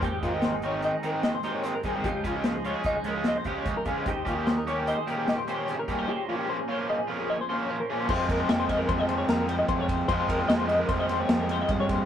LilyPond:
<<
  \new Staff \with { instrumentName = "Clean electric guitar" } { \time 5/4 \key bes \dorian \tempo 4 = 149 g'8 f'16 g'16 c''16 aes'16 des''8 ees''16 aes'16 bes'16 aes'16 ees''16 c''8 des''16 c''16 bes'16 aes'16 c''16 | g'8 f'16 g'16 c''16 aes'16 des''8 ees''16 aes'16 bes'16 aes'16 ees''16 c''8 des''16 c''16 bes'16 aes'16 c''16 | g'8 f'16 g'16 c''16 bes'16 des''8 ees''16 aes'16 bes'16 aes'16 ees''16 c''8 des''16 c''16 bes'16 aes'16 c''16 | g'8 f'16 g'16 c''16 aes'16 des''8 ees''16 aes'16 bes'16 aes'16 ees''16 c''8 des''16 c''16 bes'16 aes'16 c''16 |
c''8 bes'16 c''16 ees''16 c''16 ees''16 bes'16 c''16 ees''16 c''16 des''16 bes'8 c''16 ees''16 c''16 des''16 c''8 | c''8 bes'16 c''16 ees''16 c''16 ees''16 bes'16 c''16 ees''16 c''16 des''16 bes'8 c''16 ees''16 c''16 des''16 c''8 | }
  \new Staff \with { instrumentName = "Clean electric guitar" } { \time 5/4 \key bes \dorian << { <ees c' ees' g'>4. bes'8 ees'4 c'8 g'8 c'4 | <f c' ees' f'>4. f'16 aes'16 ees'4 c'8 g'4. | <ees' g' c''>4. des''8 c''4 g'8 c''4. | <bes des' aes' c''>4. c''8 aes'4 des'8 c''8 des'4 |
r1 r4 | r1 r4 | } \\ { aes,4 ees4. ees4. aes,4 | des4 f4. aes,4. c8 des8 | ees4 ees'4. bes,4. des8 c8 | bes,4 bes4. f,4. bes,4 |
r1 r4 | r1 r4 | } >> }
  \new Staff \with { instrumentName = "Overdriven electric guitar" } { \time 5/4 \key bes \dorian r8 <ees aes c' ees'>8 r8 <ees aes c' ees'>8 r8 <ees aes c' ees'>8 r8 <ees aes c' ees'>8 r8 <ees aes c' ees'>8 | r8 <des aes des' f'>8 r8 <des aes des' f'>8 r8 <des aes des' f'>8 r8 <des aes des' f'>8 r8 <des aes des' f'>8 | r8 <ees bes des' g'>8 r8 <ees bes des' g'>8 r8 <ees bes des' g'>8 r8 <ees bes des' g'>8 r8 <ees bes des' g'>8 | r8 <f bes des' f'>8 r8 <f bes des' f'>8 r8 <f bes des' f'>8 r8 <f bes des' f'>8 r8 <f bes des' f'>8 |
<f aes c' f'>1~ <f aes c' f'>4 | <f aes c' f'>1~ <f aes c' f'>4 | }
  \new Staff \with { instrumentName = "Fingered electric bass" } { \clef bass \time 5/4 \key bes \dorian aes,,8 aes,,2 r2 c,8 | des,8 des,4. des,4. des,8 des,16 r16 des,16 r16 | ees,8 ees,2 r2 c,8 | r1 r4 |
f,4 f,4 f,4 f,4 f,4 | f,4 f,4 f,4 f,4 g,4 | }
  \new DrumStaff \with { instrumentName = "Drums" } \drummode { \time 5/4 <hh bd>8 <hh bd sn>8 <hh sn>8 hh8 hh8 hh8 <hh sn>8 <hh sn>8 <hh sn>8 <hh bd>8 | <hh bd>8 <hh bd>8 <hh sn>8 hh8 <hh bd>8 hh8 <hh sn>8 <hh bd>8 <hh bd>8 <hh bd>8 | <hh bd>8 <hh bd>8 <hh sn>8 hh8 hh8 hh8 <hh sn>8 hh8 <hh sn>8 <hh bd>8 | r4 r4 r4 r4 r4 |
<cymc bd>8 <bd cymr sn>8 <cymr sn>8 <bd cymr>8 <bd cymr>8 cymr8 <cymr sn>8 cymr8 <bd cymr>8 <bd cymr>8 | <bd cymr>8 <bd cymr>8 <cymr sn>8 cymr8 <bd cymr>8 <cymr sn>8 <cymr sn>8 <cymr sn>8 <bd cymr>8 <bd cymr sn>8 | }
>>